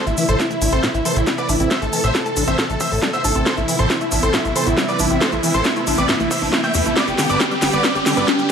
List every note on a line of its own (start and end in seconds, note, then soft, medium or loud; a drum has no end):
0.00 0.11 C3 medium
0.00 0.11 E3 medium
0.00 0.11 A3 medium
0.00 0.11 E4 medium
0.00 riser medium
0.07 0.14 A1 medium
0.07 0.11 A3 medium
0.07 0.16 E4 medium
0.07 0.16 E5 medium
0.07 closed hi-hat soft
0.07 cabasa soft
0.17 0.26 C3 medium
0.17 0.25 E3 medium
0.17 0.26 A3 medium
0.17 0.27 E4 medium
0.17 0.26 E4 medium
0.17 0.27 E5 medium
0.17 open hi-hat loud
0.17 cabasa medium
0.28 0.35 A1 medium
0.28 0.36 A2 loud
0.28 0.36 C3 medium
0.28 0.36 E3 medium
0.28 0.36 A3 medium
0.28 0.36 E4 medium
0.28 0.38 A4 medium
0.28 0.38 C5 medium
0.28 0.38 C6 medium
0.28 closed hi-hat medium
0.28 cabasa soft
0.40 0.55 C3 medium
0.40 0.55 E3 medium
0.40 0.55 A3 medium
0.40 0.47 E4 loud
0.40 0.49 E4 medium
0.40 0.55 E4 medium
0.40 0.49 E5 medium
0.40 kick loud
0.40 snare soft
0.40 closed hi-hat medium
0.40 cabasa medium
0.51 0.55 A3 loud
0.51 0.60 E4 medium
0.51 0.60 E5 medium
0.51 closed hi-hat soft
0.51 cabasa soft
0.62 0.68 A1 medium
0.62 0.77 C3 medium
0.62 0.77 E3 medium
0.62 0.77 A3 medium
0.62 0.69 D4 loud
0.62 0.77 E4 medium
0.62 0.71 E4 medium
0.62 0.71 E5 medium
0.62 open hi-hat loud
0.62 cabasa loud
0.72 0.79 A1 medium
0.72 0.83 C4 medium
0.72 0.82 A4 medium
0.72 0.82 C5 medium
0.72 0.82 C6 medium
0.72 closed hi-hat medium
0.72 cabasa soft
0.83 0.88 A2 medium
0.83 0.99 C3 medium
0.83 0.99 E3 medium
0.83 0.99 A3 medium
0.83 0.99 E4 medium
0.83 0.93 E4 medium
0.83 kick loud
0.83 snare soft
0.83 closed hi-hat medium
0.83 cabasa soft
0.94 1.01 A1 medium
0.94 0.99 A3 medium
0.94 1.04 E4 medium
0.94 1.04 E5 medium
0.94 closed hi-hat soft
0.94 cabasa soft
1.05 1.21 C3 medium
1.05 1.21 E3 medium
1.05 1.13 E3 medium
1.05 1.21 A3 medium
1.05 1.21 E4 medium
1.05 1.15 A4 medium
1.05 1.15 C5 medium
1.05 1.15 C6 medium
1.05 open hi-hat loud
1.05 cabasa medium
1.16 1.23 A1 medium
1.16 1.24 A2 loud
1.16 1.26 E4 medium
1.16 1.26 E5 medium
1.16 closed hi-hat medium
1.16 cabasa soft
1.27 1.42 C3 medium
1.27 1.43 E3 medium
1.27 1.35 G3 medium
1.27 1.42 A3 medium
1.27 1.43 E4 medium
1.27 1.37 E4 medium
1.27 1.37 E5 medium
1.27 kick loud
1.27 snare medium
1.27 closed hi-hat medium
1.27 cabasa medium
1.38 1.43 B3 medium
1.38 1.48 B4 medium
1.38 1.48 D5 medium
1.38 1.48 D6 medium
1.38 closed hi-hat soft
1.38 cabasa soft
1.49 1.56 A1 medium
1.49 1.57 C3 medium
1.49 1.57 E3 medium
1.49 1.57 A3 medium
1.49 1.57 D4 loud
1.49 1.57 E4 medium
1.49 1.59 E4 medium
1.49 1.59 E5 medium
1.49 open hi-hat loud
1.49 cabasa medium
1.60 1.67 A1 medium
1.60 1.68 C3 medium
1.60 1.68 E3 medium
1.60 1.68 A3 medium
1.60 1.71 C4 medium
1.60 1.68 E4 medium
1.60 1.70 E4 medium
1.60 1.70 E5 medium
1.60 closed hi-hat medium
1.60 cabasa soft
1.71 1.86 C3 medium
1.71 1.86 E3 medium
1.71 1.86 A3 medium
1.71 1.76 A3 medium
1.71 1.86 E4 medium
1.71 1.81 C5 medium
1.71 1.81 E5 loud
1.71 1.81 E6 loud
1.71 kick loud
1.71 snare medium
1.71 closed hi-hat medium
1.71 cabasa medium
1.82 1.89 A1 medium
1.82 1.87 A3 medium
1.82 1.92 A4 medium
1.82 1.92 A5 medium
1.82 closed hi-hat soft
1.82 cabasa soft
1.93 2.01 C3 medium
1.93 2.01 E3 medium
1.93 2.01 A3 medium
1.93 2.01 E4 medium
1.93 2.02 A4 medium
1.93 2.02 A5 medium
1.93 open hi-hat loud
1.93 cabasa medium
2.04 2.11 A1 medium
2.04 2.12 A2 loud
2.04 2.12 C3 medium
2.04 2.12 E3 medium
2.04 2.12 A3 medium
2.04 2.12 E4 medium
2.04 2.13 C5 medium
2.04 2.13 E5 medium
2.04 2.13 E6 medium
2.04 closed hi-hat medium
2.04 cabasa soft
2.15 2.30 C3 medium
2.15 2.30 E3 medium
2.15 2.30 A3 medium
2.15 2.30 E4 medium
2.15 2.23 E4 loud
2.15 2.24 A4 medium
2.15 2.24 A5 medium
2.15 kick loud
2.15 snare medium
2.15 closed hi-hat medium
2.15 cabasa medium
2.26 2.30 A3 loud
2.26 2.35 A4 medium
2.26 2.35 A5 medium
2.26 closed hi-hat soft
2.26 cabasa soft
2.36 2.44 A1 medium
2.36 2.52 C3 medium
2.36 2.52 E3 medium
2.36 2.52 A3 loud
2.36 2.44 D4 loud
2.36 2.52 E4 medium
2.36 2.46 A4 medium
2.36 2.46 A5 medium
2.36 open hi-hat loud
2.36 cabasa medium
2.47 2.54 A1 medium
2.47 2.58 C4 medium
2.47 2.57 C5 medium
2.47 2.57 E5 loud
2.47 2.57 E6 medium
2.47 closed hi-hat medium
2.47 cabasa soft
2.59 2.63 A2 medium
2.59 2.74 C3 medium
2.59 2.74 E3 medium
2.59 2.74 A3 medium
2.59 2.74 E4 medium
2.59 2.68 A4 medium
2.59 kick loud
2.59 snare medium
2.59 closed hi-hat medium
2.59 cabasa soft
2.70 2.76 A1 medium
2.70 2.74 A3 medium
2.70 2.79 A4 medium
2.70 2.79 A5 medium
2.70 closed hi-hat soft
2.70 cabasa soft
2.80 2.96 C3 medium
2.80 2.96 E3 medium
2.80 2.88 E3 medium
2.80 2.96 A3 medium
2.80 2.96 E4 medium
2.80 2.90 C5 medium
2.80 2.90 E5 medium
2.80 2.90 E6 loud
2.80 kick medium
2.80 open hi-hat loud
2.80 cabasa loud
2.92 2.98 A1 medium
2.92 2.99 A2 loud
2.92 3.01 A4 medium
2.92 3.01 A5 medium
2.92 open hi-hat medium
2.92 cabasa soft
3.02 3.18 C3 medium
3.02 3.18 E3 medium
3.02 3.10 G3 medium
3.02 3.18 A3 medium
3.02 3.18 E4 medium
3.02 3.12 A4 medium
3.02 3.12 A5 medium
3.02 kick loud
3.02 snare medium
3.02 cabasa medium
3.13 3.18 B3 medium
3.13 3.23 C5 medium
3.13 3.23 E5 medium
3.13 3.23 E6 medium
3.13 closed hi-hat soft
3.13 cabasa soft
3.24 3.31 A1 medium
3.24 3.32 C3 medium
3.24 3.32 E3 medium
3.24 3.32 A3 medium
3.24 3.32 D4 loud
3.24 3.32 E4 medium
3.24 3.34 A4 medium
3.24 3.34 A5 medium
3.24 open hi-hat loud
3.24 cabasa loud
3.35 3.42 A1 medium
3.35 3.43 C3 medium
3.35 3.43 E3 medium
3.35 3.43 A3 medium
3.35 3.46 C4 medium
3.35 3.43 E4 medium
3.35 3.45 A4 medium
3.35 3.45 A5 medium
3.35 closed hi-hat medium
3.35 cabasa soft
3.46 3.62 C3 medium
3.46 3.62 E3 medium
3.46 3.51 A3 medium
3.46 3.62 B3 medium
3.46 3.62 E4 medium
3.46 3.56 A4 medium
3.46 3.56 C5 loud
3.46 3.56 C6 loud
3.46 kick loud
3.46 snare medium
3.46 closed hi-hat medium
3.46 cabasa medium
3.57 3.64 A1 medium
3.57 3.62 A3 medium
3.57 3.67 E4 medium
3.57 3.67 E5 medium
3.57 closed hi-hat soft
3.57 cabasa soft
3.68 3.76 C3 medium
3.68 3.76 E3 medium
3.68 3.76 B3 medium
3.68 3.76 E4 medium
3.68 3.78 E4 medium
3.68 3.78 E5 medium
3.68 open hi-hat loud
3.68 cabasa medium
3.79 3.86 A1 medium
3.79 3.87 A2 loud
3.79 3.87 C3 medium
3.79 3.87 E3 medium
3.79 3.87 B3 medium
3.79 3.87 E4 medium
3.79 3.89 A4 medium
3.79 3.89 C5 loud
3.79 3.89 C6 loud
3.79 closed hi-hat soft
3.79 cabasa soft
3.90 4.05 C3 medium
3.90 4.05 E3 medium
3.90 4.05 B3 medium
3.90 4.05 E4 medium
3.90 3.98 E4 loud
3.90 4.00 E4 medium
3.90 3.99 E5 medium
3.90 kick loud
3.90 snare medium
3.90 closed hi-hat medium
3.90 cabasa medium
4.01 4.06 A3 loud
4.01 4.11 E4 medium
4.01 4.10 E5 medium
4.01 closed hi-hat soft
4.01 cabasa soft
4.12 4.19 A1 medium
4.12 4.27 C3 medium
4.12 4.27 E3 medium
4.12 4.27 B3 loud
4.12 4.20 D4 loud
4.12 4.27 E4 medium
4.12 4.21 E4 medium
4.12 4.21 E5 medium
4.12 open hi-hat loud
4.12 cabasa loud
4.23 4.30 A1 medium
4.23 4.33 C4 medium
4.23 4.32 A4 medium
4.23 4.32 C5 medium
4.23 4.32 C6 medium
4.23 closed hi-hat medium
4.23 cabasa soft
4.33 4.38 A2 medium
4.33 4.49 C3 medium
4.33 4.49 E3 medium
4.33 4.49 B3 medium
4.33 4.49 E4 medium
4.33 4.43 E4 medium
4.33 4.43 E5 medium
4.33 kick loud
4.33 snare medium
4.33 closed hi-hat soft
4.33 cabasa medium
4.45 4.52 A1 medium
4.45 4.49 A3 medium
4.45 4.54 E4 medium
4.45 4.54 E5 medium
4.45 closed hi-hat soft
4.45 cabasa soft
4.56 4.71 C3 medium
4.56 4.63 E3 medium
4.56 4.71 E3 medium
4.56 4.71 B3 medium
4.56 4.71 E4 medium
4.56 4.65 A4 medium
4.56 4.65 C5 medium
4.56 4.65 C6 medium
4.56 open hi-hat loud
4.56 cabasa medium
4.67 4.73 A1 medium
4.67 4.74 A2 loud
4.67 4.76 E4 medium
4.67 4.76 E5 medium
4.67 closed hi-hat medium
4.67 cabasa soft
4.78 4.93 C3 medium
4.78 4.93 E3 medium
4.78 4.85 G3 medium
4.78 4.93 B3 medium
4.78 4.93 E4 medium
4.78 4.87 E4 medium
4.78 kick loud
4.78 snare medium
4.78 closed hi-hat medium
4.78 cabasa medium
4.88 4.93 B3 medium
4.88 4.98 B4 medium
4.88 4.98 D5 loud
4.88 4.98 D6 medium
4.88 closed hi-hat soft
4.88 cabasa soft
4.99 5.06 A1 medium
4.99 5.07 C3 medium
4.99 5.07 E3 medium
4.99 5.07 B3 medium
4.99 5.07 D4 loud
4.99 5.09 E4 medium
4.99 5.07 E4 medium
4.99 5.09 E5 medium
4.99 open hi-hat loud
4.99 cabasa loud
5.10 5.17 A1 medium
5.10 5.18 C3 medium
5.10 5.18 E3 medium
5.10 5.18 B3 medium
5.10 5.21 C4 medium
5.10 5.20 E4 medium
5.10 5.18 E4 medium
5.10 5.20 E5 medium
5.10 closed hi-hat medium
5.10 cabasa soft
5.21 5.37 C3 medium
5.21 5.37 E3 medium
5.21 5.26 A3 medium
5.21 5.37 B3 medium
5.21 5.37 E4 medium
5.21 5.31 A4 medium
5.21 5.31 C5 loud
5.21 5.31 C6 loud
5.21 kick loud
5.21 snare medium
5.21 closed hi-hat medium
5.21 cabasa soft
5.32 5.39 A1 medium
5.32 5.37 A3 medium
5.32 5.42 E4 medium
5.32 5.42 E5 medium
5.32 closed hi-hat soft
5.32 cabasa soft
5.43 5.51 C3 medium
5.43 5.51 E3 medium
5.43 5.51 B3 medium
5.43 5.51 E4 medium
5.43 5.53 E4 medium
5.43 5.53 E5 medium
5.43 open hi-hat loud
5.43 cabasa loud
5.54 5.61 A1 medium
5.54 5.62 A2 loud
5.54 5.62 C3 medium
5.54 5.62 E3 medium
5.54 5.62 B3 medium
5.54 5.62 E4 medium
5.54 5.64 A4 medium
5.54 5.64 C5 loud
5.54 5.64 C6 medium
5.54 closed hi-hat soft
5.54 cabasa soft
5.64 5.81 C3 medium
5.64 5.81 E3 medium
5.64 5.81 B3 medium
5.64 5.81 E4 medium
5.64 5.73 E4 loud
5.64 5.75 E4 medium
5.64 5.75 E5 medium
5.64 kick loud
5.64 snare medium
5.64 closed hi-hat medium
5.64 cabasa medium
5.76 5.81 A3 loud
5.76 5.86 E4 medium
5.76 5.86 E5 medium
5.76 closed hi-hat soft
5.76 cabasa soft
5.87 5.94 A1 medium
5.87 6.02 C3 loud
5.87 6.02 E3 medium
5.87 6.02 B3 medium
5.87 5.95 D4 loud
5.87 6.02 E4 medium
5.87 5.97 E4 medium
5.87 5.97 E5 medium
5.87 open hi-hat loud
5.87 cabasa medium
5.97 6.05 A1 medium
5.97 6.09 C4 medium
5.97 6.08 B4 medium
5.97 6.08 D5 medium
5.97 6.08 D6 medium
5.97 closed hi-hat soft
5.97 cabasa soft
6.09 6.14 A2 medium
6.09 6.24 C3 medium
6.09 6.24 E3 medium
6.09 6.24 B3 medium
6.09 6.24 E4 medium
6.09 6.18 E4 medium
6.09 6.19 E5 medium
6.09 kick loud
6.09 snare medium
6.09 closed hi-hat soft
6.09 cabasa medium
6.20 6.27 A1 medium
6.20 6.25 A3 medium
6.20 6.30 E4 medium
6.20 6.30 E5 medium
6.20 closed hi-hat soft
6.20 cabasa soft
6.31 6.46 C3 medium
6.31 6.46 E3 medium
6.31 6.46 B3 medium
6.31 6.46 E4 medium
6.31 6.39 E4 loud
6.31 6.40 C5 medium
6.31 6.40 E5 loud
6.31 6.40 E6 medium
6.31 kick medium
6.31 open hi-hat loud
6.31 cabasa loud
6.42 6.49 A1 medium
6.42 6.52 D4 medium
6.42 6.51 E4 medium
6.42 6.51 E5 medium
6.42 open hi-hat medium
6.42 cabasa soft
6.53 6.68 C3 medium
6.53 6.68 E3 medium
6.53 6.61 A3 medium
6.53 6.68 B3 medium
6.53 6.68 E4 medium
6.53 6.62 E4 medium
6.53 6.62 E5 medium
6.53 kick loud
6.53 snare medium
6.53 cabasa soft
6.64 6.74 A3 loud
6.64 6.73 E5 medium
6.64 6.73 G5 medium
6.64 6.73 G6 medium
6.64 closed hi-hat soft
6.64 cabasa soft
6.74 6.81 E2 medium
6.74 6.82 C3 medium
6.74 6.82 E3 medium
6.74 6.85 A3 medium
6.74 6.82 B3 medium
6.74 6.82 E4 medium
6.74 6.84 E4 medium
6.74 6.84 E5 medium
6.74 open hi-hat loud
6.74 cabasa loud
6.86 6.92 A1 medium
6.86 6.93 C3 medium
6.86 6.93 E3 medium
6.86 6.90 A3 medium
6.86 6.93 B3 medium
6.86 6.93 E4 medium
6.86 6.95 E4 medium
6.86 6.95 E5 medium
6.86 closed hi-hat medium
6.86 cabasa soft
6.96 7.12 D3 medium
6.96 7.12 G3 medium
6.96 7.01 G3 medium
6.96 7.12 B3 medium
6.96 7.12 G4 medium
6.96 7.06 B4 medium
6.96 7.06 D5 loud
6.96 7.06 D6 medium
6.96 kick loud
6.96 snare medium
6.96 closed hi-hat medium
6.96 cabasa soft
7.07 7.14 G1 medium
7.07 7.12 G4 medium
7.07 7.17 G4 medium
7.07 7.17 G5 medium
7.07 closed hi-hat soft
7.07 cabasa soft
7.18 7.26 D3 medium
7.18 7.26 G3 medium
7.18 7.26 B3 medium
7.18 7.26 G4 medium
7.18 7.28 G4 medium
7.18 7.28 G5 medium
7.18 snare medium
7.18 open hi-hat loud
7.18 cabasa medium
7.29 7.36 G1 medium
7.29 7.37 G2 loud
7.29 7.37 D3 medium
7.29 7.37 G3 medium
7.29 7.37 B3 medium
7.29 7.37 G4 medium
7.29 7.39 B4 medium
7.29 7.39 D5 medium
7.29 7.39 D6 medium
7.29 closed hi-hat soft
7.29 cabasa soft
7.40 7.56 D3 medium
7.40 7.56 G3 medium
7.40 7.56 B3 medium
7.40 7.48 D4 medium
7.40 7.56 G4 medium
7.40 7.50 G4 medium
7.40 7.50 G5 medium
7.40 kick loud
7.40 snare medium
7.40 closed hi-hat medium
7.40 cabasa medium
7.51 7.56 G3 loud
7.51 7.61 G4 medium
7.51 7.61 G5 medium
7.51 closed hi-hat soft
7.51 cabasa soft
7.62 7.69 G1 medium
7.62 7.78 D3 medium
7.62 7.78 G3 medium
7.62 7.70 B3 loud
7.62 7.78 B3 medium
7.62 7.78 G4 medium
7.62 7.72 G4 medium
7.62 7.72 G5 medium
7.62 snare medium
7.62 open hi-hat loud
7.62 cabasa loud
7.73 7.80 G1 medium
7.73 7.82 B3 medium
7.73 7.82 B4 medium
7.73 7.82 D5 medium
7.73 7.83 D6 medium
7.73 closed hi-hat soft
7.73 cabasa soft
7.84 8.00 D3 medium
7.84 7.99 G3 medium
7.84 7.89 G3 medium
7.84 8.00 B3 medium
7.84 7.99 G4 medium
7.84 7.94 B4 medium
7.84 7.94 D5 loud
7.84 7.94 D6 medium
7.84 kick loud
7.84 snare medium
7.84 closed hi-hat medium
7.84 cabasa medium
7.95 8.02 G1 medium
7.95 8.00 G4 medium
7.95 8.05 G4 medium
7.95 8.05 G5 medium
7.95 closed hi-hat soft
7.95 cabasa soft
8.06 8.14 D3 medium
8.06 8.21 D3 medium
8.06 8.21 G3 medium
8.06 8.21 B3 medium
8.06 8.21 G4 medium
8.06 8.16 G4 medium
8.06 8.16 G5 medium
8.06 snare medium
8.06 open hi-hat loud
8.06 cabasa loud
8.17 8.24 G1 medium
8.17 8.25 G2 loud
8.17 8.27 B4 medium
8.17 8.27 D5 medium
8.17 8.27 D6 medium
8.17 closed hi-hat soft
8.17 cabasa soft
8.28 8.43 D3 medium
8.28 8.43 G3 medium
8.28 8.43 B3 medium
8.28 8.36 D4 medium
8.28 8.37 G4 medium
8.28 8.43 G4 medium
8.28 8.38 G5 medium
8.28 kick loud
8.28 snare medium
8.28 closed hi-hat medium
8.28 cabasa soft
8.39 8.44 G3 loud
8.39 8.48 G4 medium
8.39 8.48 G5 medium
8.39 closed hi-hat soft
8.39 cabasa soft